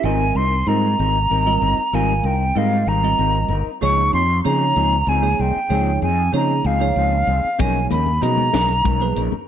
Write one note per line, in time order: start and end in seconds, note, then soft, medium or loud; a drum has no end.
0.03 0.30 G#1 medium
0.03 0.43 G3 medium
0.03 0.23 G3 medium
0.03 0.44 C4 medium
0.03 0.24 C4 medium
0.03 0.24 D#4 medium
0.03 0.44 F4 medium
0.03 0.44 A#4 medium
0.03 0.24 A#4 medium
0.03 0.44 D#5 medium
0.03 0.38 G#5 medium
0.35 0.62 C2 medium
0.35 0.56 C4 soft
0.35 0.55 D#4 soft
0.35 0.55 A#4 soft
0.35 0.69 C6 medium
0.67 0.94 G#2 medium
0.67 1.17 G3 medium
0.67 0.87 G3 medium
0.67 1.17 C4 medium
0.67 0.87 C4 medium
0.67 0.87 D#4 medium
0.67 1.17 F4 medium
0.67 1.17 A#4 medium
0.67 0.87 A#4 medium
0.67 1.17 D#5 medium
0.67 1.96 A#5 loud
0.99 1.26 G#1 medium
0.99 1.18 G3 soft
0.99 1.18 C4 medium
0.99 1.18 D#4 medium
0.99 1.18 A#4 medium
1.30 1.57 G#1 medium
1.30 1.49 G3 medium
1.30 1.49 C4 medium
1.30 1.49 D#4 medium
1.30 1.50 A#4 medium
1.46 1.75 G3 medium
1.46 1.75 C4 medium
1.46 1.76 F4 medium
1.46 1.76 A#4 medium
1.46 1.76 D#5 medium
1.61 1.75 G1 medium
1.61 1.81 C4 soft
1.61 1.81 D#4 soft
1.61 1.81 A#4 medium
1.78 muted fretless electric bass stroke soft
1.93 2.20 G#1 medium
1.93 2.32 G3 medium
1.93 2.12 G3 medium
1.93 2.12 C4 medium
1.93 2.33 C4 medium
1.93 2.12 D#4 medium
1.93 2.33 F4 medium
1.93 2.13 A#4 medium
1.93 2.33 A#4 medium
1.93 2.33 F5 medium
1.93 2.27 G#5 medium
2.23 2.51 C2 medium
2.23 2.44 C4 soft
2.23 2.44 D#4 soft
2.23 2.44 A#4 medium
2.23 2.59 G5 medium
2.55 2.82 G#2 medium
2.55 2.85 G3 medium
2.55 2.75 G3 medium
2.55 2.85 C4 medium
2.55 2.75 C4 medium
2.55 2.76 D#4 medium
2.55 2.85 F4 medium
2.55 2.86 A#4 medium
2.55 2.76 A#4 medium
2.55 2.86 D#5 medium
2.55 2.90 F5 medium
2.86 3.14 G#1 medium
2.86 3.07 G3 medium
2.86 3.07 C4 medium
2.86 3.07 D#4 medium
2.86 3.06 A#4 medium
2.86 3.55 A#5 medium
3.03 3.52 G3 medium
3.03 3.52 C4 medium
3.03 3.53 F4 medium
3.03 3.53 A#4 medium
3.03 3.53 D#5 medium
3.19 3.46 G#1 medium
3.19 3.38 G3 medium
3.19 3.38 C4 medium
3.19 3.38 D#4 medium
3.19 3.38 A#4 medium
3.48 3.63 G1 medium
3.48 3.70 C4 soft
3.48 3.69 D#4 soft
3.48 3.69 A#4 medium
3.66 muted fretless electric bass stroke soft
3.81 4.09 C#2 medium
3.81 4.21 F3 medium
3.81 4.01 F3 medium
3.81 4.21 A#3 medium
3.81 4.01 C4 medium
3.81 4.21 D#4 medium
3.81 4.01 D#4 medium
3.81 4.21 G#4 medium
3.81 4.01 G#4 medium
3.81 4.22 C#5 medium
3.81 4.12 C#6 loud
4.13 4.40 F2 medium
4.13 4.33 C4 soft
4.13 4.32 D#4 soft
4.13 4.32 G#4 soft
4.13 4.43 C6 loud
4.44 4.72 C#3 medium
4.44 4.94 F3 medium
4.44 4.64 F3 medium
4.44 4.94 A#3 medium
4.44 4.64 C4 medium
4.44 4.94 D#4 medium
4.44 4.64 D#4 medium
4.44 4.94 G#4 medium
4.44 4.65 G#4 medium
4.44 4.94 C#5 medium
4.44 5.10 A#5 loud
4.76 5.03 C#2 medium
4.76 4.96 F3 medium
4.76 4.96 C4 medium
4.76 4.96 D#4 medium
4.76 4.96 G#4 medium
5.07 5.34 C#2 medium
5.07 5.27 F3 medium
5.07 5.27 C4 medium
5.07 5.28 D#4 medium
5.07 5.28 G#4 medium
5.07 5.42 G#5 medium
5.22 5.52 F3 medium
5.22 5.52 A#3 medium
5.22 5.52 D#4 medium
5.22 5.52 G#4 medium
5.22 5.53 C#5 medium
5.39 5.52 C2 medium
5.39 5.59 C4 soft
5.39 5.59 D#4 soft
5.39 5.58 G#4 medium
5.39 6.03 G5 loud
5.56 muted fretless electric bass stroke soft
5.69 5.97 C#2 medium
5.69 6.09 F3 medium
5.69 5.90 F3 medium
5.69 6.09 A#3 medium
5.69 5.90 C4 medium
5.69 6.09 D#4 medium
5.69 5.90 D#4 medium
5.69 6.10 G#4 medium
5.69 5.90 G#4 medium
5.69 6.10 C#5 medium
6.02 6.29 F2 medium
6.02 6.22 C4 soft
6.02 6.22 D#4 soft
6.02 6.21 G#4 soft
6.02 6.32 G#5 medium
6.32 6.60 C#3 medium
6.32 6.62 F3 medium
6.32 6.53 F3 medium
6.32 6.62 A#3 medium
6.32 6.53 C4 medium
6.32 6.63 D#4 medium
6.32 6.53 D#4 medium
6.32 6.63 G#4 medium
6.32 6.53 G#4 medium
6.32 6.63 C#5 medium
6.32 6.68 A#5 medium
6.64 6.91 C#2 medium
6.64 6.85 F3 medium
6.64 6.85 C4 medium
6.64 6.85 D#4 medium
6.64 6.85 G#4 medium
6.64 7.62 F5 medium
6.80 7.29 F3 medium
6.80 7.29 A#3 medium
6.80 7.30 D#4 medium
6.80 7.30 G#4 medium
6.80 7.30 C#5 medium
6.96 7.23 C#2 medium
6.96 7.16 F3 soft
6.96 7.16 C4 medium
6.96 7.16 D#4 medium
6.96 7.16 G#4 medium
7.27 7.41 C2 medium
7.27 7.48 C4 soft
7.27 7.48 D#4 soft
7.27 7.47 G#4 soft
7.44 muted fretless electric bass stroke soft
7.59 7.86 B1 medium
7.59 7.98 F3 medium
7.59 7.78 F#3 medium
7.59 7.98 A#3 medium
7.59 7.79 C#4 medium
7.59 7.99 D#4 medium
7.59 7.79 D#4 medium
7.59 7.99 G#4 medium
7.59 7.79 A#4 medium
7.59 7.99 C#5 medium
7.59 7.90 G#5 medium
7.59 kick loud
7.59 closed hi-hat medium
7.59 muted conga medium
7.91 8.18 D#2 medium
7.91 8.10 C#4 soft
7.91 8.10 D#4 soft
7.91 8.10 A#4 soft
7.91 8.24 B5 medium
7.91 closed hi-hat medium
7.91 low conga medium
8.06 high conga medium
8.21 8.49 B2 medium
8.21 8.71 F3 medium
8.21 8.41 F#3 medium
8.21 8.71 A#3 medium
8.21 8.41 C#4 medium
8.21 8.71 D#4 medium
8.21 8.41 D#4 medium
8.21 8.71 G#4 medium
8.21 8.41 A#4 medium
8.21 8.71 D#5 medium
8.21 9.21 A#5 loud
8.21 closed hi-hat medium
8.37 low conga medium
8.53 8.80 B1 medium
8.53 8.72 F#3 medium
8.53 8.72 C#4 medium
8.53 8.72 D#4 medium
8.53 8.72 A#4 medium
8.53 snare loud
8.53 closed hi-hat medium
8.53 muted conga medium
8.69 high conga medium
8.84 9.12 B1 medium
8.84 9.04 F#3 medium
8.84 9.04 C#4 medium
8.84 9.04 D#4 medium
8.84 9.04 A#4 medium
8.84 kick medium
8.84 closed hi-hat medium
8.84 low conga medium
9.00 9.30 F3 medium
9.00 9.30 A#3 medium
9.00 9.30 D#4 medium
9.00 9.31 G#4 medium
9.00 9.31 B4 medium
9.16 9.30 A#1 medium
9.16 9.36 C#4 soft
9.16 9.35 D#4 medium
9.16 9.35 A#4 medium
9.16 closed hi-hat medium
9.32 muted fretless electric bass stroke soft
9.32 high conga medium
9.32 low conga medium